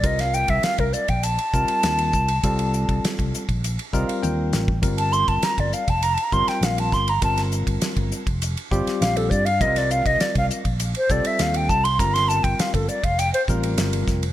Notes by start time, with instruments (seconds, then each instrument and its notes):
0.04 fingered electric bass C2, tine electric piano G3 C4 F4 A#4, flute D#5, kick, hi-hat pedal, ride
0.19 flute F5, snare, ride
0.34 flute G5, hi-hat pedal
0.48 fingered electric bass C2, flute E5, kick, ride
0.63 flute F5, muted fingered electric bass stroke, snare, hi-hat pedal, ride
0.78 fingered electric bass C2, flute A#4, kick, ride
0.93 flute D5, hi-hat pedal
1.08 fingered electric bass A#1, flute G5, kick, ride
1.23 flute A5, hi-hat pedal, ride
1.39 ride
1.53 fingered electric bass C2, tine electric piano G3 C4 F4 A#4, kick, hi-hat pedal
1.68 ride
1.83 fingered electric bass D#2, snare, hi-hat pedal, ride
1.99 ride
2.13 fingered electric bass C2, kick, hi-hat pedal
2.28 ride
2.44 fingered electric bass C2, tine electric piano G3 C4 F4 A4, kick, hi-hat pedal, ride
2.59 ride
2.74 hi-hat pedal
2.89 fingered electric bass C2, kick, ride
3.05 snare, hi-hat pedal, ride
3.19 fingered electric bass C2, kick, ride
3.34 hi-hat pedal
3.49 fingered electric bass A#1, kick, ride
3.64 hi-hat pedal, ride
3.79 ride
3.93 fingered electric bass C2, tine electric piano G3 C4 F4 A#4 D#5, kick, hi-hat pedal
4.08 tine electric piano F5, ride
4.23 fingered electric bass D#2, tine electric piano G5, hi-hat pedal, high tom
4.53 fingered electric bass A1, snare, hi-hat pedal
4.68 kick
4.82 fingered electric bass G1, tine electric piano G3 C4 F4 A#4, kick, hi-hat pedal, ride
4.98 flute A5, ride
5.13 flute C6, hi-hat pedal
5.28 fingered electric bass G1, flute A5, kick, ride
5.43 flute A#5, snare, hi-hat pedal, ride
5.58 fingered electric bass G1, flute D5, kick, ride
5.73 flute F5, hi-hat pedal
5.88 fingered electric bass F1, flute A5, kick, ride
6.03 flute A#5, hi-hat pedal, ride
6.14 flute A5, ride
6.23 flute A#5
6.32 fingered electric bass G1, tine electric piano G3 C4 F4 A#4, flute C6, kick, hi-hat pedal
6.48 flute G5, snare, ride
6.61 fingered electric bass A#1, flute F5, snare, hi-hat pedal, ride
6.78 flute A5, ride
6.92 fingered electric bass G1, flute C6, kick, snare, hi-hat pedal
7.08 flute A#5, ride
7.21 fingered electric bass G1, tine electric piano G3 C4 F4 A#4, flute A5, kick, hi-hat pedal, ride
7.37 snare, ride
7.52 hi-hat pedal
7.67 fingered electric bass G1, kick, ride
7.81 snare, hi-hat pedal, ride
7.96 fingered electric bass G1, kick, ride
8.12 hi-hat pedal
8.26 fingered electric bass F1, kick, ride
8.42 hi-hat pedal, ride
8.57 ride
8.71 fingered electric bass G1, tine electric piano G3 C4 F4 G4, kick, hi-hat pedal
8.86 muted fingered electric bass stroke, snare, ride
9.01 fingered electric bass A#1, flute F5, snare, hi-hat pedal, ride
9.17 flute A4, ride
9.30 fingered electric bass G2, flute D5, kick, hi-hat pedal
9.46 flute F5, ride
9.61 fingered electric bass C2, tine electric piano G3 C4 F4 A#4, flute D#5, kick, hi-hat pedal, ride
9.76 flute D5, snare, ride
9.91 flute F5, hi-hat pedal
10.05 fingered electric bass C2, flute D#5, kick, ride
10.20 flute D5, snare, hi-hat pedal, ride
10.35 fingered electric bass C2, flute F5, kick, ride
10.50 hi-hat pedal
10.65 fingered electric bass A#1, kick, ride
10.80 hi-hat pedal, ride
10.95 flute C5, ride
11.09 fingered electric bass C2, tine electric piano G3 C4 F4 A4, flute D5, kick, hi-hat pedal
11.25 flute E5, ride
11.39 fingered electric bass D#2, flute F5, snare, hi-hat pedal, ride
11.54 flute G5, ride
11.69 flute A5, kick, hi-hat pedal
11.84 flute C6, ride
11.99 fingered electric bass G1, tine electric piano G3 C4 F4 A#4, flute A#5, kick, hi-hat pedal, ride
12.14 flute C6, snare, ride
12.29 flute A5, hi-hat pedal
12.44 fingered electric bass G1, flute G5, kick, ride
12.59 flute F5, snare, hi-hat pedal, ride
12.74 fingered electric bass G1, flute A4, kick, ride
12.88 flute D5, hi-hat pedal
13.03 fingered electric bass F1, flute F5, kick, ride
13.19 flute G5, hi-hat pedal, ride
13.34 flute C5, ride
13.48 fingered electric bass A1, tine electric piano G3 C4 F4 A#4, kick, hi-hat pedal
13.63 ride
13.77 fingered electric bass G1, snare, hi-hat pedal, ride
13.93 ride
14.07 fingered electric bass F1, kick, snare, hi-hat pedal
14.23 ride